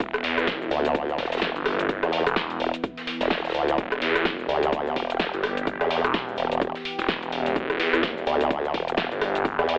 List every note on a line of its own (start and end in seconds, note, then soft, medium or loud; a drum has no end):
0.00 0.22 E1 loud
0.00 9.78 E3 medium
0.00 9.78 B3 medium
0.00 3.77 E4 medium
0.00 kick loud
0.00 closed hi-hat medium
0.00 cabasa medium
0.00 shaker loud
0.14 cross-stick medium
0.14 closed hi-hat soft
0.14 cabasa soft
0.24 0.46 E2 loud
0.24 snare medium
0.24 open hi-hat loud
0.24 shaker medium
0.38 cross-stick medium
0.38 closed hi-hat medium
0.38 cabasa medium
0.47 0.59 F#1 loud
0.47 kick loud
0.47 snare loud
0.47 closed hi-hat medium
0.47 cabasa medium
0.47 shaker medium
0.61 0.70 E1 loud
0.61 cabasa soft
0.71 1.17 D2 loud
0.71 open hi-hat medium
0.71 shaker medium
0.85 closed hi-hat medium
0.85 cabasa medium
0.95 kick loud
0.95 closed hi-hat medium
0.95 cabasa medium
0.95 shaker loud
1.09 closed hi-hat soft
1.09 cabasa soft
1.18 1.54 E1 loud
1.18 kick medium
1.18 snare medium
1.18 open hi-hat loud
1.18 shaker medium
1.25 snare medium
1.25 shaker medium
1.32 snare loud
1.32 closed hi-hat medium
1.32 cabasa medium
1.32 shaker medium
1.37 snare medium
1.37 shaker medium
1.42 kick loud
1.42 snare loud
1.42 closed hi-hat medium
1.42 cabasa medium
1.56 2.01 G1 loud
1.56 closed hi-hat soft
1.56 cabasa soft
1.66 cross-stick medium
1.66 open hi-hat medium
1.66 shaker medium
1.79 closed hi-hat medium
1.79 cabasa medium
1.89 kick loud
1.89 closed hi-hat medium
1.89 cabasa medium
1.89 shaker medium
2.03 2.24 E2 medium
2.03 cross-stick medium
2.03 closed hi-hat soft
2.03 cabasa soft
2.12 open hi-hat loud
2.12 shaker medium
2.27 2.58 E1 medium
2.27 cross-stick medium
2.27 closed hi-hat medium
2.27 cabasa medium
2.36 kick loud
2.36 snare loud
2.36 closed hi-hat medium
2.36 cabasa medium
2.36 shaker medium
2.50 closed hi-hat soft
2.50 cabasa soft
2.60 2.72 E1 loud
2.60 open hi-hat medium
2.60 shaker medium
2.74 closed hi-hat medium
2.74 closed hi-hat soft
2.74 cabasa medium
2.84 kick loud
2.84 closed hi-hat medium
2.84 cabasa medium
2.84 shaker medium
2.97 snare soft
2.97 closed hi-hat soft
2.97 cabasa soft
3.07 snare loud
3.07 open hi-hat loud
3.07 shaker medium
3.21 3.53 E1 loud
3.21 snare soft
3.21 snare loud
3.21 closed hi-hat medium
3.21 cabasa medium
3.21 shaker medium
3.31 kick loud
3.31 snare loud
3.31 snare medium
3.31 closed hi-hat medium
3.31 cabasa medium
3.31 shaker medium
3.38 snare medium
3.38 shaker medium
3.44 snare medium
3.44 closed hi-hat soft
3.44 cabasa soft
3.44 shaker medium
3.49 snare loud
3.49 shaker medium
3.54 3.77 D2 medium
3.54 open hi-hat medium
3.54 shaker medium
3.68 closed hi-hat medium
3.68 cabasa medium
3.78 4.00 E1 medium
3.78 9.78 G4 medium
3.78 kick loud
3.78 closed hi-hat medium
3.78 cabasa medium
3.78 shaker medium
3.92 cross-stick medium
3.92 closed hi-hat soft
3.92 cabasa soft
4.02 4.24 E2 loud
4.02 snare medium
4.02 open hi-hat loud
4.02 shaker medium
4.16 cross-stick medium
4.16 closed hi-hat medium
4.16 cabasa medium
4.25 4.37 F#1 loud
4.25 kick loud
4.25 snare loud
4.25 closed hi-hat medium
4.25 cabasa medium
4.25 shaker loud
4.39 4.47 E1 loud
4.39 cabasa soft
4.49 4.95 D2 loud
4.49 open hi-hat medium
4.49 shaker medium
4.63 closed hi-hat medium
4.63 cabasa medium
4.73 kick loud
4.73 closed hi-hat medium
4.73 cabasa medium
4.73 shaker loud
4.86 closed hi-hat soft
4.86 cabasa soft
4.96 5.31 E1 loud
4.96 kick medium
4.96 open hi-hat loud
4.96 shaker medium
5.10 closed hi-hat medium
5.10 cabasa medium
5.20 kick loud
5.20 snare loud
5.20 closed hi-hat medium
5.20 cabasa medium
5.20 shaker medium
5.34 5.79 G1 loud
5.34 closed hi-hat soft
5.34 cabasa soft
5.43 cross-stick medium
5.43 open hi-hat loud
5.43 shaker medium
5.57 closed hi-hat medium
5.57 cabasa medium
5.67 kick loud
5.67 closed hi-hat medium
5.67 cabasa medium
5.67 shaker medium
5.81 6.02 E2 loud
5.81 cross-stick medium
5.81 closed hi-hat soft
5.81 cabasa soft
5.91 open hi-hat loud
5.91 shaker medium
6.04 6.36 E1 medium
6.04 cross-stick medium
6.04 closed hi-hat medium
6.04 cabasa medium
6.14 kick loud
6.14 snare loud
6.14 closed hi-hat medium
6.14 cabasa medium
6.14 shaker medium
6.29 cabasa soft
6.37 6.50 E1 loud
6.37 open hi-hat loud
6.37 shaker medium
6.51 6.73 E1 loud
6.51 closed hi-hat soft
6.51 closed hi-hat medium
6.51 cabasa medium
6.62 kick loud
6.62 closed hi-hat medium
6.62 cabasa medium
6.62 shaker medium
6.75 snare medium
6.75 closed hi-hat soft
6.75 cabasa soft
6.85 open hi-hat loud
6.85 shaker medium
6.99 7.07 E1 loud
6.99 snare soft
6.99 closed hi-hat medium
6.99 cabasa medium
7.08 7.55 E1 loud
7.08 kick loud
7.08 snare loud
7.08 closed hi-hat medium
7.08 cabasa medium
7.08 shaker medium
7.23 closed hi-hat soft
7.23 cabasa soft
7.32 open hi-hat loud
7.32 shaker medium
7.46 snare soft
7.46 closed hi-hat medium
7.46 cabasa medium
7.55 7.78 E1 loud
7.55 kick loud
7.55 closed hi-hat medium
7.55 cabasa medium
7.55 shaker medium
7.70 cross-stick medium
7.70 closed hi-hat soft
7.70 cabasa soft
7.80 8.02 E2 loud
7.80 snare soft
7.80 open hi-hat loud
7.80 shaker medium
7.93 cross-stick medium
7.93 closed hi-hat medium
7.93 cabasa medium
8.03 8.15 F#1 loud
8.03 kick loud
8.03 snare loud
8.03 closed hi-hat medium
8.03 cabasa medium
8.03 shaker loud
8.17 8.25 E1 loud
8.17 cabasa soft
8.27 8.73 D2 loud
8.27 open hi-hat loud
8.27 shaker medium
8.41 closed hi-hat medium
8.41 cabasa medium
8.51 kick loud
8.51 closed hi-hat medium
8.51 cabasa medium
8.51 shaker loud
8.64 closed hi-hat soft
8.64 cabasa soft
8.74 9.09 E1 loud
8.74 kick medium
8.74 open hi-hat loud
8.74 shaker medium
8.88 closed hi-hat medium
8.88 cabasa medium
8.97 kick loud
8.97 snare loud
8.97 closed hi-hat medium
8.97 cabasa medium
8.97 shaker medium
9.12 9.57 G1 medium
9.12 closed hi-hat soft
9.12 cabasa soft
9.21 cross-stick medium
9.21 open hi-hat loud
9.21 shaker medium
9.35 closed hi-hat medium
9.35 cabasa medium
9.45 kick loud
9.45 closed hi-hat medium
9.45 cabasa medium
9.45 shaker medium
9.59 9.78 E2 medium
9.59 cross-stick medium
9.59 closed hi-hat soft
9.59 cabasa soft
9.68 open hi-hat loud
9.68 shaker medium